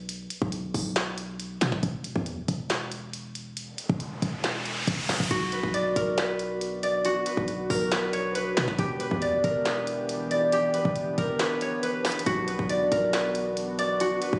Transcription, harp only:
Already playing: B4
5.31 F#4
5.53 B4
5.74 D5
5.96 A#4
6.18 B4
6.83 D5
7.05 F#4
7.26 B4
7.70 A#4
7.92 B4
8.13 C#5
8.35 B4
8.57 B4
8.79 G4
9.00 B4
9.22 D5
9.44 A#4
9.65 B4
10.31 D5
10.53 G4
10.74 B4
11.18 A#4
11.40 B4
11.62 C#5
11.83 B4
12.05 B4
12.26 F#4
12.48 B4
12.70 D5
12.92 A#4
13.13 B4
13.79 D5
14.01 F#4
14.22 B4

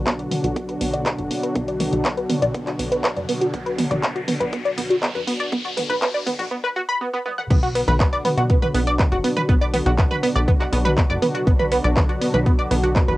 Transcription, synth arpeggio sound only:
0.06 B3
0.19 D5
0.31 B3
0.44 F#4
0.56 B3
0.68 B4
0.81 B3
0.93 D5
1.06 B3
1.18 F#4
1.30 B3
1.43 B4
1.55 B3
1.68 D5
1.80 B3
1.93 F#4
2.05 B3
2.17 B4
2.30 B3
2.42 D5
2.55 B3
2.67 F#4
2.79 B3
2.92 B4
3.04 B3
3.17 D5
3.29 B3
3.41 F#4
3.54 B3
3.66 B4
3.78 B3
3.91 D5
4.03 B3
4.16 F#4
4.28 B3
4.40 B4
4.53 B3
4.65 D5
4.78 B3
4.90 F#4
5.02 B3
5.15 B4
5.27 B3
5.40 D5
5.52 B3
5.64 F#4
5.77 B3
5.89 B4
6.01 B3
6.14 D5
6.26 B3
6.39 F#4
6.51 B3
6.64 B4
6.76 F#4
6.89 B5
7.01 B3
7.13 B3
7.26 B3
7.38 F#5
7.50 B3 B4
7.63 F#4 F#5
7.75 B3 B4
7.88 B4 B5
8.00 B3 B4
8.12 D5 D6
8.25 B3 B4
8.37 F#4 F#5
8.49 B3 B4
8.62 B4 B5
8.74 B3 B4
8.87 D5 D6
8.99 B3 B4
9.12 F#4 F#5
9.24 B3 B4
9.36 B4 B5
9.49 B3 B4
9.61 D5 D6
9.74 B3 B4
9.86 F#4 F#5
9.98 B3 B4
10.11 B4 B5
10.23 B3 B4
10.36 D5 D6
10.48 B3 B4
10.60 F#4 F#5
10.73 B3 B4
10.85 B4 B5
10.97 B3 B4
11.10 D5 D6
11.22 B3 B4
11.35 F#4 F#5
11.47 B3 B4
11.59 B4 B5
11.72 B3 B4
11.84 D5 D6
11.97 B3 B4
12.09 F#4 F#5
12.21 B3 B4
12.34 B4 B5
12.46 B3 B4
12.59 D5 D6
12.71 B3 B4
12.84 F#4 F#5
12.96 B3 B4
13.08 B4 B5

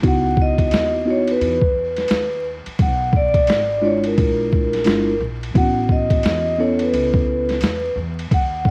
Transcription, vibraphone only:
0.08 F#5
0.42 D#5
1.10 C#5
1.31 B4
2.82 F#5
3.16 D5
3.85 C#5
4.07 A#4
5.57 F#5
5.92 D#5
6.27 D#5
6.60 C#5
6.82 B4
8.34 F#5

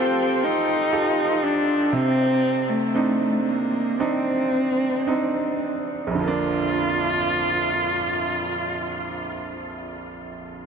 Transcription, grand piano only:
Already playing: F3 F4 G4 A4
0.93 F4 G4 A4
1.93 C3
2.95 C4 D4 D#4
3.99 C4 D4 D#4
5.07 C4 D4 D#4
6.07 A#1
6.11 F2 D3
6.19 F3
6.24 A#3
6.28 D4

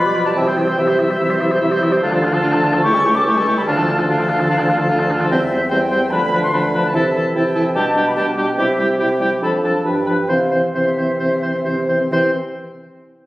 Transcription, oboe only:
0.06 D5
0.15 B4
0.26 D5
0.37 E5
0.48 C5
0.57 E5
0.68 C5
0.79 E5
0.88 C5
0.99 E5
1.11 C5
1.20 E5
1.30 C5
1.41 E5
1.51 C5
1.61 E5
1.72 C5
1.83 E5
1.93 C5
2.03 F4
2.13 A4
2.24 F4
2.34 A4
2.42 F4
2.53 A4
2.64 F4
2.74 A4
2.85 G4
2.94 A4
3.05 G4
3.17 A4
3.26 G4
3.37 A4
3.47 G4
3.58 A4
3.68 F4
3.78 A4
3.89 F4
3.99 A4
4.10 F4
4.20 A4
4.30 F4
4.40 A4
4.50 F4
4.59 A4
4.69 F4
4.79 A4
4.90 F4
5.00 A4
5.11 F4
5.21 A4
5.32 C5
5.51 C5
5.70 C5
5.91 C5
6.12 B4
6.33 B4
6.53 B4
6.74 B4
6.96 A4
7.16 A4
7.35 A4
7.55 A4
7.76 G4
7.96 G4
8.17 G4
8.37 G4
8.58 G4
8.79 G4
8.99 G4
9.21 G4
9.43 A4
9.64 A4
9.85 B4
10.06 B4
10.28 C5
10.51 C5
10.75 C5
10.98 C5
11.19 C5
11.42 C5
11.65 C5
11.88 C5
12.13 C5

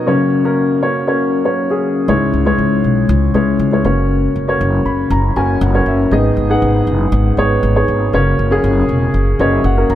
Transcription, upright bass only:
2.08 C#2
2.33 C#2
2.58 C#2
2.84 B1
3.09 C#2
3.34 C#2
3.59 C#2
3.84 F#1
4.36 F#1
4.61 F#1
4.86 F#1
5.10 F#1
5.36 F#1
5.61 F#1
5.86 F#1
6.11 G#1
6.37 G#1
6.62 G#1
6.87 F#1
7.12 G#1
7.37 G#1
7.63 G#1
7.88 G#1
8.13 F#1
8.39 F#1
8.64 F#1
8.89 E1
9.14 F#1
9.39 F#1
9.64 F#1
9.90 F#1

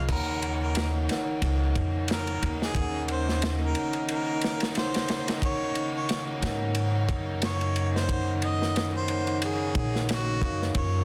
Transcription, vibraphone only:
Already playing: F3 F4 G#4 D#5
0.07 D#4 A#4 C#5 F#5
1.07 D#4 A#4 C#5 F#5
2.74 C#4 D#4 A#4 F#5
3.74 D#4 A#4 C#5 F#5
4.74 D#4 A#4 C#5 F#5
5.40 D#4 A#4 C#5 F#5
6.40 D#4 A#4 C#5 F#5
8.07 D#4 A#4 C#5 F#5
9.08 D#4 A#4 C#5 F#5
9.74 D#4 A#4 C#5 F#5
10.41 D#4 A#4 C#5 F5
10.74 F#3 C#4 F4 A#4

